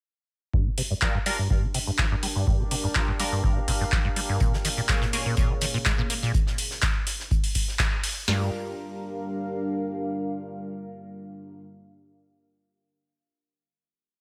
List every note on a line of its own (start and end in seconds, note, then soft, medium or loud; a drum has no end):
0.53 0.68 G2 medium
0.53 4.41 D4 medium
0.53 kick loud
0.66 0.70 D3 medium
0.78 0.82 C3 medium
0.78 4.41 G4 medium
0.78 open hi-hat loud
0.91 0.94 G2 medium
1.02 1.09 F3 medium
1.02 1.13 G3 medium
1.02 1.13 D4 medium
1.02 1.13 F4 medium
1.02 1.13 A#4 medium
1.02 kick loud
1.02 clap loud
1.15 1.18 G2 loud
1.20 6.34 A#4 medium
1.26 1.37 G3 medium
1.26 1.30 G3 medium
1.26 1.37 D4 medium
1.26 1.37 F4 medium
1.26 1.37 A#4 loud
1.26 open hi-hat loud
1.39 1.48 G2 medium
1.50 1.65 G2 medium
1.50 kick loud
1.63 1.67 D3 medium
1.68 6.34 F5 medium
1.74 1.79 C3 medium
1.74 open hi-hat loud
1.87 1.91 G2 medium
1.98 2.06 F3 medium
1.98 kick loud
1.98 clap loud
2.11 2.15 G2 loud
2.23 2.27 G3 medium
2.23 open hi-hat medium
2.36 2.45 G2 medium
2.47 2.61 G2 medium
2.47 kick loud
2.60 2.64 D3 medium
2.71 2.75 C3 medium
2.71 open hi-hat loud
2.84 2.88 G2 medium
2.95 3.02 F3 medium
2.95 3.07 G3 medium
2.95 3.07 D4 medium
2.95 3.07 F4 medium
2.95 3.07 A#4 medium
2.95 kick loud
2.95 clap loud
3.08 3.12 G2 loud
3.19 3.24 G3 medium
3.19 3.31 G3 medium
3.19 3.31 D4 medium
3.19 3.31 F4 medium
3.19 3.31 A#4 loud
3.19 open hi-hat loud
3.32 3.42 G2 medium
3.44 3.58 G2 medium
3.44 kick loud
3.56 3.60 D3 medium
3.68 3.72 C3 medium
3.68 kick medium
3.68 open hi-hat loud
3.81 3.84 G2 medium
3.92 3.99 F3 medium
3.92 kick loud
3.92 clap loud
4.05 4.09 G2 loud
4.16 4.21 G3 medium
4.16 open hi-hat loud
4.29 4.39 G2 medium
4.40 4.55 A#2 medium
4.40 6.32 A#2 medium
4.40 6.32 A#3 medium
4.40 6.34 C#4 medium
4.40 6.32 G#4 medium
4.40 6.32 C#5 medium
4.40 kick loud
4.40 closed hi-hat medium
4.53 4.57 F3 medium
4.53 snare soft
4.65 4.69 D#3 medium
4.65 closed hi-hat medium
4.65 open hi-hat loud
4.77 4.81 A#2 medium
4.77 closed hi-hat soft
4.89 4.96 G#3 medium
4.89 5.00 A#3 medium
4.89 5.00 F4 medium
4.89 5.00 G#4 medium
4.89 5.00 C#5 medium
4.89 kick loud
4.89 snare loud
4.89 clap loud
4.89 closed hi-hat medium
5.01 5.05 A#2 loud
5.01 6.34 G#4 medium
5.01 snare medium
5.13 5.17 A#3 medium
5.13 5.24 A#3 medium
5.13 5.24 F4 medium
5.13 5.24 G#4 medium
5.13 5.24 C#5 loud
5.13 closed hi-hat medium
5.13 open hi-hat loud
5.26 5.35 A#2 medium
5.37 5.51 A#2 medium
5.37 kick loud
5.37 closed hi-hat medium
5.50 5.54 F3 medium
5.61 5.66 D#3 medium
5.61 closed hi-hat medium
5.61 open hi-hat loud
5.74 5.78 A#2 medium
5.85 5.93 G#3 medium
5.85 kick loud
5.85 snare loud
5.85 clap loud
5.85 closed hi-hat medium
5.98 6.02 A#2 loud
6.10 6.14 A#3 medium
6.10 closed hi-hat medium
6.10 open hi-hat loud
6.23 6.32 A#2 medium
6.23 snare soft
6.34 kick loud
6.34 closed hi-hat medium
6.47 snare soft
6.58 closed hi-hat medium
6.58 open hi-hat loud
6.71 snare medium
6.82 kick loud
6.82 snare loud
6.82 clap loud
6.82 closed hi-hat medium
7.07 snare soft
7.07 closed hi-hat medium
7.07 open hi-hat loud
7.20 snare medium
7.31 kick loud
7.31 closed hi-hat medium
7.44 open hi-hat medium
7.55 kick medium
7.55 closed hi-hat medium
7.55 open hi-hat loud
7.68 snare soft
7.79 kick loud
7.79 snare loud
7.79 clap loud
7.79 closed hi-hat medium
8.04 open hi-hat loud
8.04 open hi-hat medium
8.28 8.50 G2 medium
8.28 11.65 G3 medium
8.28 11.65 D4 medium
8.28 11.65 F4 medium
8.28 11.65 A#4 medium
8.28 11.65 F5 medium
8.28 snare loud
8.36 11.72 G4 medium
8.43 11.80 A#4 medium
8.50 11.86 F5 medium